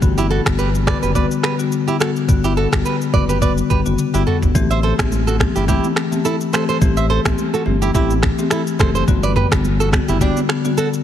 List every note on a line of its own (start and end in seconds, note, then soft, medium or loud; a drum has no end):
0.02 0.40 G1 loud
0.02 0.42 D3 medium
0.02 0.42 G3 medium
0.02 0.42 B3 medium
0.02 0.43 F#4 loud
0.02 kick loud
0.02 shaker medium
0.18 0.26 E4 medium
0.18 0.26 G4 medium
0.18 shaker medium
0.31 0.41 F#4 medium
0.31 0.40 A4 medium
0.46 0.95 G1 medium
0.46 0.62 D3 medium
0.46 0.62 G3 medium
0.46 0.62 B3 medium
0.46 0.62 F#4 medium
0.46 finger snap medium
0.46 kick medium
0.46 cross-stick loud
0.46 shaker soft
0.59 0.69 G4 medium
0.59 0.68 B4 medium
0.59 shaker medium
0.75 shaker medium
0.87 1.05 D3 medium
0.87 1.05 G3 medium
0.87 1.05 B3 medium
0.87 1.05 F#4 medium
0.87 0.97 B4 medium
0.87 0.97 D5 medium
0.87 finger snap medium
0.87 kick loud
0.87 cross-stick loud
1.03 1.27 F#1 medium
1.03 1.11 G4 medium
1.03 1.11 B4 medium
1.03 shaker medium
1.15 1.33 D3 medium
1.15 1.33 G3 medium
1.15 1.33 B3 medium
1.15 1.33 F#4 medium
1.15 1.26 B4 medium
1.15 1.25 D5 medium
1.15 kick medium
1.15 shaker medium
1.31 shaker medium
1.43 1.54 G4 medium
1.43 1.53 B4 medium
1.43 finger snap medium
1.43 cross-stick medium
1.59 1.75 D3 medium
1.59 1.75 G3 medium
1.59 1.75 B3 medium
1.59 1.75 F#4 medium
1.59 shaker medium
1.72 shaker medium
1.88 1.96 E4 medium
1.88 1.96 G4 medium
1.88 shaker medium
2.00 2.18 D3 medium
2.00 2.18 G3 medium
2.00 2.18 B3 medium
2.00 2.18 F#4 medium
2.00 2.11 F#4 medium
2.00 2.10 A4 medium
2.00 finger snap medium
2.00 cross-stick medium
2.00 shaker soft
2.16 shaker soft
2.28 2.66 G1 loud
2.28 2.69 D3 medium
2.28 2.69 G3 medium
2.28 2.69 B3 medium
2.28 2.69 F#4 medium
2.28 kick loud
2.28 shaker medium
2.44 2.53 E4 medium
2.44 2.52 G4 medium
2.44 shaker medium
2.57 2.67 F#4 medium
2.57 2.67 A4 medium
2.72 2.83 G1 medium
2.72 2.88 D3 medium
2.72 2.88 G3 medium
2.72 2.88 B3 medium
2.72 2.88 F#4 medium
2.72 finger snap medium
2.72 kick medium
2.72 cross-stick loud
2.72 shaker soft
2.85 2.96 G4 medium
2.85 2.95 B4 medium
2.85 shaker medium
3.01 shaker medium
3.13 3.62 F#1 medium
3.13 3.31 D3 medium
3.13 3.31 G3 medium
3.13 3.32 B3 medium
3.13 3.32 F#4 medium
3.13 3.24 B4 medium
3.13 3.23 D5 medium
3.13 kick loud
3.29 3.38 G4 medium
3.29 3.37 B4 medium
3.29 shaker medium
3.42 3.60 D3 medium
3.42 3.60 G3 medium
3.42 3.60 B3 medium
3.42 3.60 F#4 loud
3.42 3.52 B4 medium
3.42 3.52 D5 medium
3.42 kick medium
3.42 shaker medium
3.58 shaker medium
3.70 3.84 G1 medium
3.70 3.80 G4 medium
3.70 3.80 B4 medium
3.70 kick medium
3.70 shaker medium
3.85 3.97 F#1 loud
3.85 4.01 D3 medium
3.85 4.01 G3 medium
3.85 4.01 B3 medium
3.85 4.02 F#4 medium
3.85 shaker medium
3.98 high tom medium
3.98 shaker medium
4.14 4.25 G1 loud
4.14 4.30 D3 medium
4.14 4.30 G3 medium
4.14 4.30 B3 medium
4.14 4.22 E4 medium
4.14 4.30 F#4 medium
4.14 4.22 G4 medium
4.14 shaker medium
4.27 4.37 F#4 medium
4.27 4.36 A4 medium
4.27 mid tom medium
4.42 4.53 G1 medium
4.42 floor tom medium
4.42 shaker medium
4.55 4.93 A1 loud
4.55 4.95 E3 medium
4.55 4.95 A3 medium
4.55 4.95 C4 medium
4.55 4.95 G4 medium
4.55 kick loud
4.55 low conga medium
4.55 shaker medium
4.71 4.79 C5 medium
4.71 4.79 E5 medium
4.71 shaker medium
4.83 4.94 A4 medium
4.83 4.93 C5 medium
4.99 5.47 A1 medium
4.99 5.14 E3 medium
4.99 5.15 A3 medium
4.99 5.15 C4 medium
4.99 5.15 G4 medium
4.99 finger snap medium
4.99 kick medium
4.99 cross-stick loud
4.99 high conga medium
4.99 shaker soft
5.12 low conga medium
5.12 shaker medium
5.27 5.36 F#4 medium
5.27 5.35 A4 medium
5.27 shaker medium
5.39 5.58 E3 medium
5.39 5.58 A3 medium
5.39 5.58 C4 medium
5.39 5.58 G4 medium
5.39 finger snap medium
5.39 kick loud
5.39 cross-stick loud
5.39 high conga medium
5.39 low conga medium
5.56 5.80 G1 medium
5.56 5.64 E4 medium
5.56 5.64 G4 medium
5.56 shaker medium
5.68 5.86 E3 medium
5.68 5.86 A3 medium
5.68 5.86 C4 medium
5.68 5.87 E4 medium
5.68 5.86 G4 medium
5.68 5.86 G4 loud
5.68 kick medium
5.68 low conga medium
5.68 shaker medium
5.84 high conga medium
5.84 shaker medium
5.96 finger snap medium
5.96 cross-stick medium
6.12 6.28 E3 medium
6.12 6.28 A3 medium
6.12 6.28 C4 medium
6.12 6.28 G4 medium
6.12 high conga medium
6.12 shaker medium
6.25 6.35 E4 medium
6.25 6.35 A4 medium
6.25 shaker medium
6.41 shaker medium
6.53 6.71 E3 medium
6.53 6.71 A3 medium
6.53 6.71 C4 medium
6.53 6.71 G4 medium
6.53 6.64 A4 medium
6.53 6.63 C5 medium
6.53 finger snap medium
6.53 cross-stick medium
6.53 shaker soft
6.69 6.77 A4 medium
6.69 6.77 C5 medium
6.69 shaker soft
6.81 7.19 A1 loud
6.81 7.22 E3 medium
6.81 7.22 A3 medium
6.81 7.22 C4 medium
6.81 7.22 G4 loud
6.81 kick loud
6.81 low conga medium
6.81 shaker medium
6.97 7.06 C5 medium
6.97 7.05 E5 medium
6.97 shaker medium
7.10 7.20 A4 medium
7.10 7.20 C5 medium
7.25 7.36 A1 medium
7.25 7.41 E3 medium
7.25 7.41 A3 medium
7.25 7.41 C4 medium
7.25 7.41 G4 medium
7.25 finger snap loud
7.25 kick medium
7.25 cross-stick loud
7.25 high conga medium
7.25 shaker soft
7.38 low conga medium
7.38 shaker medium
7.54 7.62 F#4 medium
7.54 7.62 A4 medium
7.54 shaker medium
7.66 7.91 G1 medium
7.66 7.84 E3 medium
7.66 7.84 A3 medium
7.66 7.84 C4 medium
7.66 7.84 G4 medium
7.66 high conga medium
7.66 low conga medium
7.82 7.90 E4 medium
7.82 7.90 G4 medium
7.82 shaker medium
7.94 8.32 A1 loud
7.94 8.12 E3 medium
7.94 8.13 A3 medium
7.94 8.13 C4 medium
7.94 8.13 E4 medium
7.94 8.12 G4 medium
7.94 8.13 G4 loud
7.94 kick medium
7.94 low conga medium
7.94 shaker medium
8.10 high conga medium
8.10 shaker medium
8.23 finger snap medium
8.23 kick medium
8.23 cross-stick medium
8.38 8.54 E3 medium
8.38 8.54 A3 medium
8.38 8.54 C4 medium
8.38 8.54 G4 medium
8.38 high conga medium
8.38 shaker medium
8.50 8.61 E4 medium
8.50 8.61 A4 medium
8.50 finger snap medium
8.50 cross-stick medium
8.50 shaker medium
8.67 shaker medium
8.79 9.04 F#1 medium
8.79 8.97 E3 medium
8.79 8.97 A3 medium
8.79 8.98 C4 medium
8.79 8.98 G4 medium
8.79 8.90 A4 medium
8.79 8.89 C5 medium
8.79 finger snap medium
8.79 kick loud
8.79 cross-stick medium
8.79 shaker soft
8.95 9.04 A4 medium
8.95 9.03 C5 medium
8.95 shaker medium
9.08 9.45 G1 loud
9.08 9.48 D3 medium
9.08 9.48 G3 medium
9.08 9.48 B3 medium
9.08 9.48 F#4 loud
9.08 kick loud
9.08 low conga medium
9.08 shaker medium
9.23 9.32 B4 medium
9.23 9.31 D5 medium
9.23 shaker medium
9.36 9.46 G4 medium
9.36 9.46 B4 medium
9.36 mid tom loud
9.51 10.00 G1 medium
9.51 9.67 D3 medium
9.51 9.67 G3 medium
9.51 9.67 B3 medium
9.51 9.68 F#4 medium
9.51 finger snap medium
9.51 kick medium
9.51 cross-stick loud
9.51 high conga medium
9.51 shaker soft
9.64 low conga medium
9.64 shaker medium
9.80 9.89 F#4 medium
9.80 9.88 A4 medium
9.80 shaker medium
9.92 10.11 D3 medium
9.92 10.11 G3 medium
9.92 10.11 B3 medium
9.92 10.11 F#4 medium
9.92 finger snap medium
9.92 kick loud
9.92 cross-stick loud
9.92 high conga medium
9.92 low conga medium
10.08 10.33 F#1 medium
10.08 10.17 E4 medium
10.08 10.16 G4 medium
10.08 shaker medium
10.21 10.39 D3 medium
10.21 10.39 G3 medium
10.21 10.39 B3 medium
10.21 10.39 D4 medium
10.21 10.39 F#4 loud
10.21 10.39 G4 medium
10.21 kick medium
10.21 low conga medium
10.21 shaker medium
10.37 high conga medium
10.37 shaker medium
10.49 finger snap medium
10.49 cross-stick medium
10.65 10.80 D3 medium
10.65 10.81 G3 medium
10.65 10.81 B3 medium
10.65 10.81 F#4 medium
10.65 high conga medium
10.65 shaker medium
10.78 10.88 F#4 medium
10.78 10.87 A4 medium
10.78 shaker medium
10.93 shaker medium